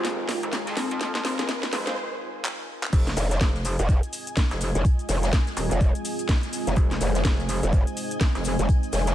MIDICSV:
0, 0, Header, 1, 9, 480
1, 0, Start_track
1, 0, Key_signature, -4, "minor"
1, 0, Tempo, 480000
1, 1008, Time_signature, 4, 2, 24, 8
1, 9149, End_track
2, 0, Start_track
2, 0, Title_t, "Ambient pad"
2, 0, Program_c, 0, 92
2, 0, Note_on_c, 0, 65, 86
2, 0, Note_on_c, 0, 70, 83
2, 0, Note_on_c, 0, 75, 83
2, 0, Note_on_c, 0, 80, 76
2, 1968, Note_off_c, 0, 65, 0
2, 1968, Note_off_c, 0, 70, 0
2, 1968, Note_off_c, 0, 75, 0
2, 1968, Note_off_c, 0, 80, 0
2, 3072, Note_on_c, 0, 80, 93
2, 3329, Note_on_c, 0, 75, 90
2, 9149, Note_off_c, 0, 75, 0
2, 9149, Note_off_c, 0, 80, 0
2, 9149, End_track
3, 0, Start_track
3, 0, Title_t, "Ambient pad"
3, 0, Program_c, 1, 92
3, 0, Note_on_c, 1, 56, 79
3, 0, Note_on_c, 1, 60, 71
3, 0, Note_on_c, 1, 63, 89
3, 1928, Note_off_c, 1, 56, 0
3, 1928, Note_off_c, 1, 60, 0
3, 1939, Note_off_c, 1, 63, 0
3, 2928, Note_on_c, 1, 56, 83
3, 2928, Note_on_c, 1, 60, 76
3, 2928, Note_on_c, 1, 65, 89
3, 6730, Note_off_c, 1, 65, 0
3, 6769, Note_on_c, 1, 63, 92
3, 9149, Note_off_c, 1, 56, 0
3, 9149, Note_off_c, 1, 60, 0
3, 9149, Note_off_c, 1, 63, 0
3, 9149, End_track
4, 0, Start_track
4, 0, Title_t, "Marimba"
4, 0, Program_c, 2, 12
4, 768, Note_on_c, 2, 60, 90
4, 926, Note_off_c, 2, 60, 0
4, 1248, Note_on_c, 2, 60, 96
4, 1632, Note_off_c, 2, 60, 0
4, 9149, End_track
5, 0, Start_track
5, 0, Title_t, "Synth stab"
5, 0, Program_c, 3, 62
5, 1392, Note_on_c, 3, 53, 73
5, 1392, Note_on_c, 3, 56, 69
5, 1392, Note_on_c, 3, 60, 69
5, 1392, Note_on_c, 3, 68, 80
5, 1472, Note_off_c, 3, 53, 0
5, 1472, Note_off_c, 3, 56, 0
5, 1472, Note_off_c, 3, 60, 0
5, 1472, Note_off_c, 3, 68, 0
5, 1728, Note_on_c, 3, 53, 82
5, 1728, Note_on_c, 3, 56, 75
5, 1728, Note_on_c, 3, 60, 75
5, 1728, Note_on_c, 3, 68, 90
5, 1850, Note_off_c, 3, 53, 0
5, 1850, Note_off_c, 3, 56, 0
5, 1850, Note_off_c, 3, 60, 0
5, 1850, Note_off_c, 3, 68, 0
5, 1871, Note_on_c, 3, 53, 79
5, 1872, Note_on_c, 3, 56, 72
5, 1872, Note_on_c, 3, 60, 70
5, 1872, Note_on_c, 3, 72, 87
5, 1952, Note_off_c, 3, 53, 0
5, 1952, Note_off_c, 3, 56, 0
5, 1952, Note_off_c, 3, 60, 0
5, 1952, Note_off_c, 3, 72, 0
5, 9149, End_track
6, 0, Start_track
6, 0, Title_t, "Wobble bass"
6, 0, Program_c, 4, 39
6, 0, Note_on_c, 4, 29, 98
6, 409, Note_off_c, 4, 29, 0
6, 432, Note_on_c, 4, 29, 99
6, 513, Note_off_c, 4, 29, 0
6, 529, Note_on_c, 4, 27, 99
6, 649, Note_off_c, 4, 27, 0
6, 672, Note_on_c, 4, 41, 96
6, 889, Note_off_c, 4, 41, 0
6, 912, Note_on_c, 4, 41, 97
6, 1233, Note_off_c, 4, 41, 0
6, 1248, Note_on_c, 4, 29, 97
6, 1473, Note_off_c, 4, 29, 0
6, 1728, Note_on_c, 4, 29, 98
6, 1953, Note_off_c, 4, 29, 0
6, 2928, Note_on_c, 4, 29, 99
6, 3153, Note_off_c, 4, 29, 0
6, 3408, Note_on_c, 4, 29, 97
6, 3769, Note_off_c, 4, 29, 0
6, 4512, Note_on_c, 4, 29, 99
6, 4729, Note_off_c, 4, 29, 0
6, 5568, Note_on_c, 4, 27, 102
6, 5689, Note_off_c, 4, 27, 0
6, 6768, Note_on_c, 4, 29, 102
6, 6993, Note_off_c, 4, 29, 0
6, 7248, Note_on_c, 4, 29, 101
6, 7609, Note_off_c, 4, 29, 0
6, 8352, Note_on_c, 4, 29, 100
6, 8569, Note_off_c, 4, 29, 0
6, 9149, End_track
7, 0, Start_track
7, 0, Title_t, "Wobble bass"
7, 0, Program_c, 5, 39
7, 3168, Note_on_c, 5, 29, 94
7, 3393, Note_off_c, 5, 29, 0
7, 3792, Note_on_c, 5, 29, 98
7, 4009, Note_off_c, 5, 29, 0
7, 4752, Note_on_c, 5, 29, 95
7, 4833, Note_off_c, 5, 29, 0
7, 5088, Note_on_c, 5, 29, 99
7, 5313, Note_off_c, 5, 29, 0
7, 5712, Note_on_c, 5, 29, 101
7, 5929, Note_off_c, 5, 29, 0
7, 6672, Note_on_c, 5, 29, 95
7, 6753, Note_off_c, 5, 29, 0
7, 7008, Note_on_c, 5, 29, 98
7, 7233, Note_off_c, 5, 29, 0
7, 7632, Note_on_c, 5, 29, 99
7, 7849, Note_off_c, 5, 29, 0
7, 8592, Note_on_c, 5, 29, 100
7, 8673, Note_off_c, 5, 29, 0
7, 8928, Note_on_c, 5, 29, 97
7, 9149, Note_off_c, 5, 29, 0
7, 9149, End_track
8, 0, Start_track
8, 0, Title_t, "Riser"
8, 0, Program_c, 6, 103
8, 0, Note_on_c, 6, 60, 77
8, 1968, Note_off_c, 6, 60, 0
8, 9149, End_track
9, 0, Start_track
9, 0, Title_t, "Drums"
9, 47, Note_on_c, 9, 38, 82
9, 47, Note_on_c, 9, 42, 65
9, 48, Note_off_c, 9, 42, 0
9, 48, Note_on_c, 9, 42, 85
9, 147, Note_off_c, 9, 38, 0
9, 148, Note_off_c, 9, 42, 0
9, 288, Note_on_c, 9, 38, 83
9, 288, Note_on_c, 9, 46, 110
9, 294, Note_on_c, 9, 42, 66
9, 387, Note_off_c, 9, 38, 0
9, 387, Note_off_c, 9, 46, 0
9, 394, Note_off_c, 9, 42, 0
9, 431, Note_on_c, 9, 42, 50
9, 522, Note_on_c, 9, 38, 123
9, 528, Note_off_c, 9, 38, 0
9, 528, Note_off_c, 9, 42, 0
9, 528, Note_on_c, 9, 38, 88
9, 528, Note_on_c, 9, 42, 66
9, 530, Note_off_c, 9, 42, 0
9, 530, Note_on_c, 9, 42, 83
9, 628, Note_off_c, 9, 38, 0
9, 630, Note_off_c, 9, 42, 0
9, 668, Note_on_c, 9, 38, 51
9, 671, Note_on_c, 9, 42, 59
9, 762, Note_off_c, 9, 38, 0
9, 762, Note_on_c, 9, 38, 50
9, 767, Note_off_c, 9, 38, 0
9, 767, Note_on_c, 9, 38, 90
9, 767, Note_on_c, 9, 46, 101
9, 771, Note_off_c, 9, 42, 0
9, 772, Note_on_c, 9, 42, 68
9, 867, Note_off_c, 9, 38, 0
9, 867, Note_off_c, 9, 46, 0
9, 872, Note_off_c, 9, 42, 0
9, 912, Note_on_c, 9, 42, 54
9, 1007, Note_off_c, 9, 42, 0
9, 1007, Note_on_c, 9, 42, 84
9, 1008, Note_off_c, 9, 42, 0
9, 1008, Note_on_c, 9, 38, 88
9, 1008, Note_on_c, 9, 42, 62
9, 1108, Note_off_c, 9, 38, 0
9, 1108, Note_off_c, 9, 42, 0
9, 1151, Note_on_c, 9, 38, 81
9, 1244, Note_on_c, 9, 42, 70
9, 1246, Note_off_c, 9, 38, 0
9, 1246, Note_on_c, 9, 38, 55
9, 1247, Note_off_c, 9, 38, 0
9, 1247, Note_on_c, 9, 38, 94
9, 1247, Note_on_c, 9, 46, 108
9, 1344, Note_off_c, 9, 42, 0
9, 1347, Note_off_c, 9, 38, 0
9, 1347, Note_off_c, 9, 46, 0
9, 1382, Note_on_c, 9, 38, 60
9, 1391, Note_off_c, 9, 38, 0
9, 1391, Note_on_c, 9, 38, 85
9, 1391, Note_on_c, 9, 42, 51
9, 1487, Note_off_c, 9, 38, 0
9, 1487, Note_off_c, 9, 42, 0
9, 1487, Note_on_c, 9, 38, 97
9, 1487, Note_on_c, 9, 42, 62
9, 1490, Note_off_c, 9, 42, 0
9, 1490, Note_on_c, 9, 42, 80
9, 1492, Note_off_c, 9, 38, 0
9, 1492, Note_on_c, 9, 38, 107
9, 1590, Note_off_c, 9, 42, 0
9, 1592, Note_off_c, 9, 38, 0
9, 1628, Note_on_c, 9, 38, 45
9, 1631, Note_off_c, 9, 38, 0
9, 1631, Note_on_c, 9, 38, 86
9, 1727, Note_off_c, 9, 38, 0
9, 1727, Note_on_c, 9, 38, 101
9, 1727, Note_on_c, 9, 46, 99
9, 1731, Note_on_c, 9, 42, 67
9, 1827, Note_off_c, 9, 38, 0
9, 1827, Note_off_c, 9, 46, 0
9, 1831, Note_off_c, 9, 42, 0
9, 1871, Note_on_c, 9, 38, 86
9, 1871, Note_on_c, 9, 42, 50
9, 1873, Note_off_c, 9, 42, 0
9, 1873, Note_on_c, 9, 42, 46
9, 1971, Note_off_c, 9, 38, 0
9, 1973, Note_off_c, 9, 42, 0
9, 2448, Note_on_c, 9, 39, 115
9, 2548, Note_off_c, 9, 39, 0
9, 2832, Note_on_c, 9, 39, 82
9, 2926, Note_on_c, 9, 42, 80
9, 2928, Note_on_c, 9, 36, 120
9, 2928, Note_on_c, 9, 49, 103
9, 2932, Note_off_c, 9, 39, 0
9, 2933, Note_on_c, 9, 69, 44
9, 3026, Note_off_c, 9, 42, 0
9, 3028, Note_off_c, 9, 36, 0
9, 3028, Note_off_c, 9, 49, 0
9, 3033, Note_off_c, 9, 69, 0
9, 3072, Note_on_c, 9, 38, 38
9, 3072, Note_on_c, 9, 42, 39
9, 3077, Note_on_c, 9, 69, 22
9, 3166, Note_off_c, 9, 38, 0
9, 3166, Note_on_c, 9, 38, 45
9, 3167, Note_on_c, 9, 46, 103
9, 3168, Note_off_c, 9, 42, 0
9, 3168, Note_on_c, 9, 42, 76
9, 3172, Note_off_c, 9, 69, 0
9, 3172, Note_on_c, 9, 69, 75
9, 3266, Note_off_c, 9, 38, 0
9, 3267, Note_off_c, 9, 46, 0
9, 3268, Note_off_c, 9, 42, 0
9, 3272, Note_off_c, 9, 69, 0
9, 3311, Note_on_c, 9, 42, 70
9, 3313, Note_on_c, 9, 38, 46
9, 3316, Note_on_c, 9, 69, 34
9, 3408, Note_off_c, 9, 38, 0
9, 3408, Note_on_c, 9, 36, 114
9, 3408, Note_on_c, 9, 38, 125
9, 3409, Note_off_c, 9, 42, 0
9, 3409, Note_on_c, 9, 42, 82
9, 3412, Note_off_c, 9, 69, 0
9, 3412, Note_on_c, 9, 69, 45
9, 3417, Note_off_c, 9, 38, 0
9, 3417, Note_on_c, 9, 38, 122
9, 3508, Note_off_c, 9, 36, 0
9, 3509, Note_off_c, 9, 42, 0
9, 3512, Note_off_c, 9, 69, 0
9, 3517, Note_off_c, 9, 38, 0
9, 3551, Note_on_c, 9, 38, 43
9, 3556, Note_on_c, 9, 69, 22
9, 3647, Note_on_c, 9, 46, 95
9, 3648, Note_on_c, 9, 42, 76
9, 3651, Note_off_c, 9, 38, 0
9, 3652, Note_off_c, 9, 69, 0
9, 3652, Note_on_c, 9, 69, 80
9, 3747, Note_off_c, 9, 46, 0
9, 3748, Note_off_c, 9, 42, 0
9, 3752, Note_off_c, 9, 69, 0
9, 3791, Note_on_c, 9, 42, 68
9, 3795, Note_off_c, 9, 42, 0
9, 3795, Note_on_c, 9, 42, 46
9, 3796, Note_on_c, 9, 69, 34
9, 3888, Note_on_c, 9, 36, 121
9, 3893, Note_off_c, 9, 42, 0
9, 3893, Note_off_c, 9, 69, 0
9, 3893, Note_on_c, 9, 42, 81
9, 3893, Note_on_c, 9, 69, 46
9, 3988, Note_off_c, 9, 36, 0
9, 3993, Note_off_c, 9, 42, 0
9, 3993, Note_off_c, 9, 69, 0
9, 4031, Note_on_c, 9, 42, 55
9, 4037, Note_on_c, 9, 69, 22
9, 4127, Note_on_c, 9, 46, 107
9, 4131, Note_off_c, 9, 42, 0
9, 4132, Note_on_c, 9, 42, 66
9, 4133, Note_off_c, 9, 69, 0
9, 4133, Note_on_c, 9, 69, 81
9, 4227, Note_off_c, 9, 46, 0
9, 4232, Note_off_c, 9, 42, 0
9, 4232, Note_off_c, 9, 69, 0
9, 4272, Note_on_c, 9, 42, 71
9, 4277, Note_on_c, 9, 69, 34
9, 4368, Note_on_c, 9, 36, 122
9, 4368, Note_on_c, 9, 38, 127
9, 4370, Note_off_c, 9, 38, 0
9, 4370, Note_on_c, 9, 38, 121
9, 4372, Note_off_c, 9, 42, 0
9, 4373, Note_off_c, 9, 69, 0
9, 4373, Note_on_c, 9, 69, 44
9, 4374, Note_on_c, 9, 42, 98
9, 4468, Note_off_c, 9, 36, 0
9, 4470, Note_off_c, 9, 38, 0
9, 4473, Note_off_c, 9, 69, 0
9, 4474, Note_off_c, 9, 42, 0
9, 4512, Note_on_c, 9, 42, 54
9, 4515, Note_on_c, 9, 38, 57
9, 4517, Note_on_c, 9, 69, 23
9, 4606, Note_off_c, 9, 38, 0
9, 4606, Note_on_c, 9, 38, 49
9, 4608, Note_off_c, 9, 42, 0
9, 4608, Note_on_c, 9, 42, 72
9, 4608, Note_on_c, 9, 46, 93
9, 4613, Note_off_c, 9, 69, 0
9, 4613, Note_on_c, 9, 69, 81
9, 4706, Note_off_c, 9, 38, 0
9, 4708, Note_off_c, 9, 42, 0
9, 4708, Note_off_c, 9, 46, 0
9, 4713, Note_off_c, 9, 69, 0
9, 4752, Note_on_c, 9, 42, 69
9, 4757, Note_on_c, 9, 69, 33
9, 4848, Note_on_c, 9, 36, 125
9, 4852, Note_off_c, 9, 42, 0
9, 4852, Note_on_c, 9, 42, 81
9, 4853, Note_off_c, 9, 69, 0
9, 4853, Note_on_c, 9, 69, 44
9, 4948, Note_off_c, 9, 36, 0
9, 4952, Note_off_c, 9, 42, 0
9, 4953, Note_off_c, 9, 69, 0
9, 4991, Note_on_c, 9, 42, 38
9, 4996, Note_on_c, 9, 69, 21
9, 5087, Note_on_c, 9, 46, 113
9, 5090, Note_off_c, 9, 42, 0
9, 5090, Note_on_c, 9, 42, 65
9, 5091, Note_on_c, 9, 38, 61
9, 5092, Note_off_c, 9, 69, 0
9, 5092, Note_on_c, 9, 69, 76
9, 5187, Note_off_c, 9, 46, 0
9, 5190, Note_off_c, 9, 42, 0
9, 5191, Note_off_c, 9, 38, 0
9, 5192, Note_off_c, 9, 69, 0
9, 5231, Note_on_c, 9, 42, 69
9, 5236, Note_on_c, 9, 69, 33
9, 5237, Note_on_c, 9, 38, 60
9, 5328, Note_off_c, 9, 38, 0
9, 5328, Note_on_c, 9, 36, 122
9, 5328, Note_on_c, 9, 38, 124
9, 5331, Note_off_c, 9, 38, 0
9, 5331, Note_off_c, 9, 42, 0
9, 5331, Note_on_c, 9, 38, 117
9, 5331, Note_on_c, 9, 42, 96
9, 5332, Note_off_c, 9, 69, 0
9, 5332, Note_on_c, 9, 69, 44
9, 5428, Note_off_c, 9, 36, 0
9, 5431, Note_off_c, 9, 38, 0
9, 5431, Note_off_c, 9, 42, 0
9, 5432, Note_off_c, 9, 69, 0
9, 5468, Note_on_c, 9, 38, 51
9, 5471, Note_on_c, 9, 42, 38
9, 5476, Note_on_c, 9, 69, 21
9, 5567, Note_off_c, 9, 42, 0
9, 5567, Note_on_c, 9, 42, 71
9, 5567, Note_on_c, 9, 46, 101
9, 5568, Note_off_c, 9, 38, 0
9, 5572, Note_off_c, 9, 69, 0
9, 5572, Note_on_c, 9, 69, 79
9, 5667, Note_off_c, 9, 42, 0
9, 5667, Note_off_c, 9, 46, 0
9, 5672, Note_off_c, 9, 69, 0
9, 5711, Note_on_c, 9, 42, 66
9, 5714, Note_off_c, 9, 42, 0
9, 5714, Note_on_c, 9, 42, 47
9, 5716, Note_on_c, 9, 69, 32
9, 5808, Note_on_c, 9, 36, 125
9, 5812, Note_off_c, 9, 69, 0
9, 5812, Note_on_c, 9, 69, 43
9, 5814, Note_off_c, 9, 42, 0
9, 5814, Note_on_c, 9, 42, 85
9, 5908, Note_off_c, 9, 36, 0
9, 5912, Note_off_c, 9, 69, 0
9, 5914, Note_off_c, 9, 42, 0
9, 5951, Note_on_c, 9, 42, 53
9, 5956, Note_on_c, 9, 69, 22
9, 6047, Note_off_c, 9, 42, 0
9, 6047, Note_on_c, 9, 42, 65
9, 6047, Note_on_c, 9, 46, 111
9, 6052, Note_off_c, 9, 69, 0
9, 6052, Note_on_c, 9, 69, 77
9, 6147, Note_off_c, 9, 42, 0
9, 6147, Note_off_c, 9, 46, 0
9, 6152, Note_off_c, 9, 69, 0
9, 6185, Note_on_c, 9, 42, 47
9, 6191, Note_off_c, 9, 42, 0
9, 6191, Note_on_c, 9, 42, 69
9, 6196, Note_on_c, 9, 69, 33
9, 6287, Note_on_c, 9, 38, 109
9, 6288, Note_off_c, 9, 38, 0
9, 6288, Note_on_c, 9, 36, 125
9, 6288, Note_on_c, 9, 38, 125
9, 6291, Note_off_c, 9, 42, 0
9, 6293, Note_off_c, 9, 69, 0
9, 6293, Note_on_c, 9, 69, 44
9, 6294, Note_on_c, 9, 42, 81
9, 6388, Note_off_c, 9, 36, 0
9, 6388, Note_off_c, 9, 38, 0
9, 6393, Note_off_c, 9, 69, 0
9, 6394, Note_off_c, 9, 42, 0
9, 6431, Note_on_c, 9, 42, 53
9, 6434, Note_on_c, 9, 38, 39
9, 6436, Note_on_c, 9, 69, 22
9, 6528, Note_on_c, 9, 46, 99
9, 6531, Note_off_c, 9, 42, 0
9, 6532, Note_on_c, 9, 42, 74
9, 6533, Note_off_c, 9, 69, 0
9, 6533, Note_on_c, 9, 69, 78
9, 6534, Note_off_c, 9, 38, 0
9, 6628, Note_off_c, 9, 46, 0
9, 6632, Note_off_c, 9, 42, 0
9, 6633, Note_off_c, 9, 69, 0
9, 6672, Note_on_c, 9, 42, 68
9, 6677, Note_on_c, 9, 38, 41
9, 6677, Note_on_c, 9, 69, 33
9, 6761, Note_off_c, 9, 42, 0
9, 6761, Note_on_c, 9, 42, 90
9, 6768, Note_on_c, 9, 36, 127
9, 6773, Note_off_c, 9, 69, 0
9, 6773, Note_on_c, 9, 69, 42
9, 6777, Note_off_c, 9, 38, 0
9, 6861, Note_off_c, 9, 42, 0
9, 6868, Note_off_c, 9, 36, 0
9, 6873, Note_off_c, 9, 69, 0
9, 6912, Note_on_c, 9, 38, 39
9, 6912, Note_on_c, 9, 42, 36
9, 6917, Note_on_c, 9, 69, 21
9, 7002, Note_off_c, 9, 42, 0
9, 7002, Note_on_c, 9, 42, 67
9, 7008, Note_on_c, 9, 46, 110
9, 7011, Note_off_c, 9, 38, 0
9, 7011, Note_on_c, 9, 38, 43
9, 7013, Note_off_c, 9, 69, 0
9, 7013, Note_on_c, 9, 69, 74
9, 7102, Note_off_c, 9, 42, 0
9, 7108, Note_off_c, 9, 46, 0
9, 7111, Note_off_c, 9, 38, 0
9, 7113, Note_off_c, 9, 69, 0
9, 7149, Note_on_c, 9, 38, 44
9, 7152, Note_on_c, 9, 42, 65
9, 7157, Note_on_c, 9, 69, 33
9, 7248, Note_on_c, 9, 36, 124
9, 7249, Note_off_c, 9, 38, 0
9, 7249, Note_on_c, 9, 38, 121
9, 7252, Note_off_c, 9, 38, 0
9, 7252, Note_off_c, 9, 42, 0
9, 7252, Note_on_c, 9, 38, 122
9, 7253, Note_off_c, 9, 69, 0
9, 7253, Note_on_c, 9, 69, 43
9, 7256, Note_on_c, 9, 42, 97
9, 7348, Note_off_c, 9, 36, 0
9, 7352, Note_off_c, 9, 38, 0
9, 7353, Note_off_c, 9, 69, 0
9, 7356, Note_off_c, 9, 42, 0
9, 7389, Note_on_c, 9, 38, 46
9, 7397, Note_on_c, 9, 69, 21
9, 7488, Note_on_c, 9, 46, 98
9, 7489, Note_off_c, 9, 38, 0
9, 7490, Note_on_c, 9, 42, 69
9, 7493, Note_off_c, 9, 69, 0
9, 7493, Note_on_c, 9, 69, 76
9, 7588, Note_off_c, 9, 46, 0
9, 7590, Note_off_c, 9, 42, 0
9, 7593, Note_off_c, 9, 69, 0
9, 7631, Note_on_c, 9, 42, 44
9, 7632, Note_off_c, 9, 42, 0
9, 7632, Note_on_c, 9, 42, 65
9, 7637, Note_on_c, 9, 69, 32
9, 7728, Note_on_c, 9, 36, 126
9, 7732, Note_off_c, 9, 42, 0
9, 7733, Note_off_c, 9, 69, 0
9, 7733, Note_on_c, 9, 42, 86
9, 7733, Note_on_c, 9, 69, 43
9, 7828, Note_off_c, 9, 36, 0
9, 7833, Note_off_c, 9, 42, 0
9, 7833, Note_off_c, 9, 69, 0
9, 7872, Note_on_c, 9, 42, 51
9, 7877, Note_on_c, 9, 69, 21
9, 7968, Note_on_c, 9, 46, 113
9, 7972, Note_off_c, 9, 42, 0
9, 7973, Note_off_c, 9, 69, 0
9, 7973, Note_on_c, 9, 69, 75
9, 7976, Note_on_c, 9, 42, 71
9, 8068, Note_off_c, 9, 46, 0
9, 8073, Note_off_c, 9, 69, 0
9, 8076, Note_off_c, 9, 42, 0
9, 8112, Note_on_c, 9, 42, 66
9, 8117, Note_on_c, 9, 69, 33
9, 8205, Note_on_c, 9, 38, 114
9, 8208, Note_off_c, 9, 38, 0
9, 8208, Note_on_c, 9, 36, 126
9, 8208, Note_on_c, 9, 38, 126
9, 8212, Note_off_c, 9, 42, 0
9, 8212, Note_on_c, 9, 42, 90
9, 8213, Note_off_c, 9, 69, 0
9, 8213, Note_on_c, 9, 69, 44
9, 8308, Note_off_c, 9, 36, 0
9, 8308, Note_off_c, 9, 38, 0
9, 8312, Note_off_c, 9, 42, 0
9, 8313, Note_off_c, 9, 69, 0
9, 8352, Note_on_c, 9, 42, 52
9, 8357, Note_on_c, 9, 69, 21
9, 8358, Note_on_c, 9, 38, 57
9, 8438, Note_off_c, 9, 42, 0
9, 8438, Note_on_c, 9, 42, 72
9, 8448, Note_on_c, 9, 46, 98
9, 8453, Note_off_c, 9, 38, 0
9, 8453, Note_off_c, 9, 69, 0
9, 8453, Note_on_c, 9, 38, 53
9, 8453, Note_on_c, 9, 69, 78
9, 8538, Note_off_c, 9, 42, 0
9, 8548, Note_off_c, 9, 46, 0
9, 8553, Note_off_c, 9, 38, 0
9, 8553, Note_off_c, 9, 69, 0
9, 8592, Note_on_c, 9, 42, 67
9, 8597, Note_on_c, 9, 69, 33
9, 8688, Note_on_c, 9, 36, 126
9, 8692, Note_off_c, 9, 42, 0
9, 8692, Note_on_c, 9, 42, 96
9, 8693, Note_off_c, 9, 69, 0
9, 8693, Note_on_c, 9, 69, 44
9, 8788, Note_off_c, 9, 36, 0
9, 8792, Note_off_c, 9, 42, 0
9, 8793, Note_off_c, 9, 69, 0
9, 8832, Note_on_c, 9, 42, 35
9, 8837, Note_on_c, 9, 69, 22
9, 8921, Note_off_c, 9, 42, 0
9, 8921, Note_on_c, 9, 42, 72
9, 8928, Note_on_c, 9, 46, 110
9, 8933, Note_off_c, 9, 69, 0
9, 8933, Note_on_c, 9, 69, 75
9, 8935, Note_on_c, 9, 38, 52
9, 9021, Note_off_c, 9, 42, 0
9, 9028, Note_off_c, 9, 46, 0
9, 9033, Note_off_c, 9, 69, 0
9, 9035, Note_off_c, 9, 38, 0
9, 9064, Note_on_c, 9, 38, 58
9, 9072, Note_on_c, 9, 42, 66
9, 9077, Note_on_c, 9, 69, 33
9, 9149, Note_off_c, 9, 38, 0
9, 9149, Note_off_c, 9, 42, 0
9, 9149, Note_off_c, 9, 69, 0
9, 9149, End_track
0, 0, End_of_file